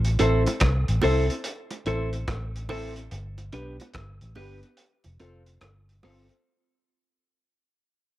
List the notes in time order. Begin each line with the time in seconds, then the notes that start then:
Already playing: A1
0.05 closed hi-hat
0.19 A1 C4 E4 A4 C5, closed hi-hat
0.46 closed hi-hat, high bongo
0.60 C2, kick, cross-stick, closed hi-hat, high bongo
0.88 A1, closed hi-hat
1.02 C2 C4 E4 A4 C5, open hi-hat, low bongo
1.30 closed hi-hat
1.44 closed hi-hat
1.71 closed hi-hat, high bongo
1.86 A1 C4 E4 A4 C5, closed hi-hat
2.13 closed hi-hat
2.28 A1, kick, cross-stick, closed hi-hat, high bongo
2.56 closed hi-hat
2.69 C4 E4 A4 C5, open hi-hat, high bongo, low bongo
2.96 closed hi-hat
3.11 G1, closed hi-hat
3.38 closed hi-hat, high bongo
3.53 B1 B3 D4 G4 B4, closed hi-hat
3.80 closed hi-hat, high bongo
3.94 G1, kick, cross-stick, closed hi-hat, high bongo
4.21 A1, closed hi-hat
4.35 G1 B3 D4 G4 B4, open hi-hat, low bongo
4.63 closed hi-hat
4.77 closed hi-hat
5.04 F1, closed hi-hat, high bongo
5.20 F1 C4 F4 A4 C5, closed hi-hat
5.46 closed hi-hat
5.61 G1, cross-stick, closed hi-hat, high bongo
5.89 closed hi-hat
6.03 G1 C4 F4 A4 C5, cross-stick, open hi-hat, high bongo, low bongo
6.29 A4 C5, closed hi-hat